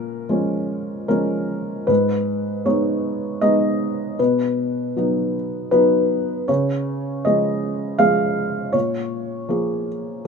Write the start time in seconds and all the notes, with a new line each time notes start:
Already playing: A#2 A#4
0.29 F3 G#3 C#4
1.08 F3 G#3 C#4 A#4
1.87 G#2 B4
2.66 G#3 B3 D#4 C#5
3.41 G#3 B3 D#4 D#5
4.19 B2 B4
4.96 F#3 B3 D#4
5.71 F#3 B3 D#4 B4
6.48 C#3 C#5
7.25 F3 G#3 G#4 D#5
7.99 F3 G#3 G#4 F5
8.73 A#2 C#5
9.49 F3 A#3 G#4